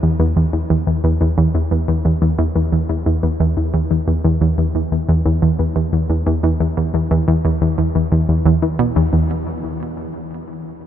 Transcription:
0.03 E2
0.20 E2
0.36 E2
0.53 E2
0.70 E2
0.87 E2
1.04 E2
1.21 E2
1.38 E2
1.54 E2
1.71 E2
1.88 E2
2.05 E2
2.22 E2
2.39 E2
2.56 E2
2.73 E2
2.89 E2
3.06 E2
3.23 E2
3.40 E2
3.57 E2
3.74 E2
3.91 E2
4.08 E2
4.24 E2
4.41 E2
4.58 E2
4.75 E2
4.92 E2
5.09 E2
5.26 E2
5.42 E2
5.59 E2
5.76 E2
5.93 E2
6.10 E2
6.27 E2
6.43 E2
6.60 E2
6.77 E2
6.94 E2
7.11 E2
7.28 E2
7.45 E2
7.61 E2
7.78 E2
7.95 E2
8.12 E2
8.29 E2
8.46 E2
8.62 E3
8.79 B2
8.96 E2
9.13 E2

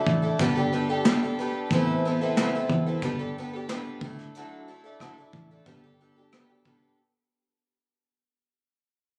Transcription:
Already playing: A3 D4 E4 A4
0.06 A1, kick
0.22 A3 D4 E4 A4
0.39 G1 G3 B3 D4 G4 A4, kick, closed hi-hat
0.56 D4 G4 A4
0.73 B3 D4 G4 A4
0.89 D4 G4 A4
1.05 G3 B3 D4 G4 A4, snare, closed hi-hat
1.23 D4 G4 A4
1.39 B3 D4 G4 A4
1.70 A1 A2 E3 B3 C4 E4, kick, closed hi-hat
1.74 A4
2.05 B3 C4 E4 A4
2.21 B3 C4 E4 A4
2.37 A2 E3 B3 C4 E4 A4, snare, closed hi-hat
2.55 B3 C4 E4 A4
2.69 E2, kick
2.87 B3 C4 E4 A4
3.02 G1 G3 B3 D4 G4 A4, kick, closed hi-hat
3.19 D4 G4 A4
3.38 B3 D4 G4 A4
3.53 D4 G4 A4
3.69 G3 B3 D4 G4 A4, snare, closed hi-hat
4.01 D2 A3 D4 E4 A4, kick
4.19 snare
4.35 D3 F#3 A3 D4 E4, closed hi-hat
4.39 A4
4.68 A3 D4 E4 A4
4.84 A3 D4 E4 A4
5.00 D3 F#3 A3 D4 E4 A4, kick, cross-stick, closed hi-hat
5.18 A3 D4 E4 A4
5.33 A1, kick
5.51 A3 D4 E4 A4
5.66 G1 G3 B3 D4 G4 A4, kick, closed hi-hat
5.84 D4 G4 A4
6.00 B3 D4 G4 A4
6.16 D4 G4 A4
6.32 G3 B3 D4 G4 A4, cross-stick, closed hi-hat
6.49 D4 G4 A4
6.65 B3 D4 G4 A4, kick

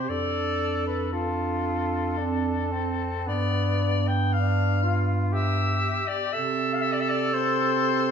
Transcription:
Already playing: C4 C5
0.09 F2 D4 A4 D5
0.87 B4
1.12 D4 F4 A4
2.17 C4 D4
2.72 C4
3.26 G2 B3 D5
4.08 G5
4.32 D4 F5
4.83 F4
5.33 G4 E5
6.08 D5
6.33 C3 C4 A4 E5
6.73 F5
6.81 E5
6.92 D5
7.00 E5
7.09 D5
7.34 C4 C5

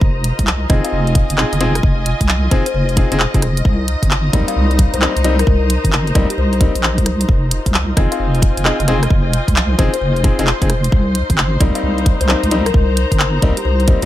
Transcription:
Already playing: D#4 C5 A#5
0.01 F1 F4 D#5, kick
0.17 D#5
0.24 closed hi-hat
0.39 C2, kick, closed hi-hat
0.47 clap
0.58 G#5
0.70 F1 C4 D#4 F4 G#4 D#5, kick, cross-stick, closed hi-hat
0.84 F5, closed hi-hat
0.93 F1
1.07 closed hi-hat
1.15 kick, closed hi-hat
1.30 F1, closed hi-hat
1.38 C4 D#4 F4 G#4 D#5, cross-stick, clap
1.53 F1 D#5, closed hi-hat
1.61 C4 D#4 F4 G#4, closed hi-hat
1.75 cross-stick, closed hi-hat
1.83 F1, kick
2.06 closed hi-hat
2.21 C2, kick, closed hi-hat
2.29 clap
2.51 F1 C4 D#4 F4 G#4 C5, kick, closed hi-hat
2.66 C5, closed hi-hat
2.74 F1 C5
2.89 closed hi-hat
2.97 C4 D#4 F4 G#4, kick, closed hi-hat
3.12 F1 C4 D#4 F4 G#4, closed hi-hat
3.20 clap
3.34 F1 C4 D#4 F4 G#4, kick, closed hi-hat
3.42 cross-stick, closed hi-hat
3.57 closed hi-hat
3.65 C2 D#4, kick
3.88 closed hi-hat
4.00 G1 C5 A#5, kick, closed hi-hat
4.11 clap
4.33 C2 G3 A#3 C4 D#4 D#5, kick, closed hi-hat
4.48 F5, closed hi-hat
4.56 C2
4.71 closed hi-hat
4.79 kick, closed hi-hat
4.94 C2 C5, closed hi-hat
5.02 G3 A#3 C4 D#4, cross-stick, clap
5.17 C2, closed hi-hat
5.24 G3 A#3 C4 D#4, closed hi-hat
5.39 A#4, cross-stick, closed hi-hat
5.47 C2, kick
5.70 closed hi-hat
5.84 G1, kick, closed hi-hat
5.93 clap
6.07 closed hi-hat
6.15 C2 G3 A#3 C4 D#4, kick, cross-stick, closed hi-hat
6.30 G4, closed hi-hat
6.38 C2 C5
6.53 C5, closed hi-hat
6.61 G3 A#3 C4 D#4, kick, closed hi-hat
6.75 A#1, closed hi-hat
6.83 clap
6.98 C2, kick, closed hi-hat
7.06 cross-stick, closed hi-hat
7.21 closed hi-hat
7.29 F1 F4 C5, kick
7.51 closed hi-hat
7.60 D#5
7.66 C2, kick, closed hi-hat
7.74 clap
7.97 F1 C4 D#4 F4 G#4 D#5 G#5, kick, cross-stick, closed hi-hat
8.12 F5, closed hi-hat
8.20 F1
8.35 closed hi-hat
8.42 kick, closed hi-hat
8.57 F1, closed hi-hat
8.65 C4 D#4 F4 G#4 D#5, cross-stick, clap
8.80 F1 D#5, closed hi-hat
8.88 C4 D#4 F4 G#4, closed hi-hat
9.03 cross-stick, closed hi-hat
9.10 F1, kick
9.33 closed hi-hat
9.48 C2, kick, closed hi-hat
9.56 clap
9.79 F1 C4 D#4 F4 G#4 C5, kick, closed hi-hat
9.94 C5, closed hi-hat
10.01 F1 C5
10.16 closed hi-hat
10.24 C4 D#4 F4 G#4, kick, closed hi-hat
10.39 F1 C4 D#4 F4 G#4, closed hi-hat
10.47 clap
10.62 F1 C4 D#4 F4 G#4, kick, closed hi-hat
10.70 cross-stick, closed hi-hat
10.84 closed hi-hat
10.92 C2 D#4, kick
11.15 closed hi-hat
11.27 G1 C5, kick, closed hi-hat
11.38 clap
11.60 C2 G3 A#3 C4 D#4 D#5, kick, cross-stick, closed hi-hat
11.73 F5 A#5, closed hi-hat
11.83 C2
11.98 closed hi-hat
12.06 kick, closed hi-hat
12.21 C2 C5, closed hi-hat
12.29 G3 A#3 C4 D#4, cross-stick, clap
12.43 C2, closed hi-hat
12.51 G3 A#3 C4 D#4, closed hi-hat
12.66 A#4, cross-stick, closed hi-hat
12.74 C2, kick
12.97 closed hi-hat
13.12 G1, kick, closed hi-hat
13.20 clap
13.42 C2 G3 A#3 C4 D#4, kick, closed hi-hat
13.57 G4, closed hi-hat
13.65 C2 C5
13.80 C5, closed hi-hat
13.88 G3 A#3 C4 D#4, kick, closed hi-hat

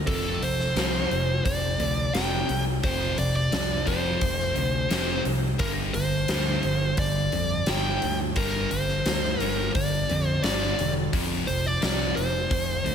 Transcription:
0.07 F1 F2 C3 F3 A4, kick, open hi-hat
0.41 F1 F2 C3 C5, open hi-hat
0.60 snare
0.76 C2 F2 C3 F3, snare, open hi-hat
1.10 F1 F2 C3, open hi-hat
1.45 F1 F2 C3 D5, kick, open hi-hat
1.80 D2 F2 C3, open hi-hat
2.13 F1 F2 C3 F3 G5, snare, open hi-hat
2.48 C2 F2 C3, open hi-hat
2.83 F1 F2 C3 F3 C5, kick, open hi-hat
3.17 F1 F2 C3 D5, open hi-hat
3.36 D5
3.52 C2 F2 C3, snare, open hi-hat
3.85 F1 F2 C3 F3 C5, kick, open hi-hat
4.20 F1 F2 C3, kick, open hi-hat
4.40 snare
4.54 D2 F2 C3, open hi-hat
4.89 F1 F2 C3 F3, snare, open hi-hat
5.23 C2 F2 C3, open hi-hat
5.58 G1 G2 D3 G3 A#4, kick, open hi-hat
5.94 G1 G2 D3 C5, open hi-hat
6.28 D2 G2 D3 G3, snare, open hi-hat
6.62 G1 G2 D3, open hi-hat
6.97 G1 G2 D3 D5, kick, open hi-hat
7.32 F2 G2 D3, open hi-hat
7.66 G1 G2 D3 G3 G5, snare, open hi-hat
8.02 D2 G2 D3, open hi-hat
8.36 G1 G2 D3 G3 A#4, kick, open hi-hat
8.71 G1 G2 D3 C5, open hi-hat
8.89 snare
9.06 D2 G2 D3, snare, open hi-hat
9.40 G1 G2 D3 G3 A#4, open hi-hat
9.75 G1 G2 D3 D5, kick, open hi-hat
10.09 F2 G2 D3, open hi-hat
10.28 C5
10.44 G1 G2 D3 G3 D5, snare, open hi-hat
10.79 E1 G2 D3, open hi-hat
11.13 F1 F2 C3 F3, kick, open hi-hat
11.47 F1 F2 C3 C5, open hi-hat
11.66 D5
11.81 C2 F2 C3 F3 D5, snare, open hi-hat
12.15 F1 F2 C3 C5, open hi-hat
12.50 F1 F2 C3, kick, open hi-hat
12.84 D2 F2 C3, open hi-hat

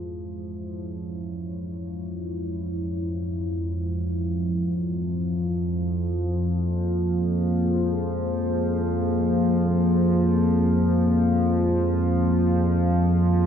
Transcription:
Already playing: F2 F3 G#3 E4 G#4 C#5
5.46 A#3
5.97 G#4
6.56 C5
13.09 G#3

